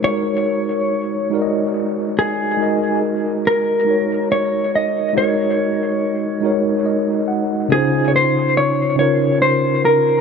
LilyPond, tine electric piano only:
\new Staff \with { instrumentName = "Tine electric piano" } { \time 6/8 \key des \major \tempo 4. = 47 << { r2. | r2. | r2 ees''8 ges''8 | r2. | } \\ { <aes ees' ges' bes' des''>4. <aes ees' ges' bes' d'' ees''>4. | <aes ees' ges' bes' ees''>4. <aes ees' ges' bes' des''>4. | <aes ees' ges' bes' ees''>4. <aes ees' ges' bes' des''>4. | <des des' ees' f' c''>4. <des des' ees' f' bes'>4. | } >> }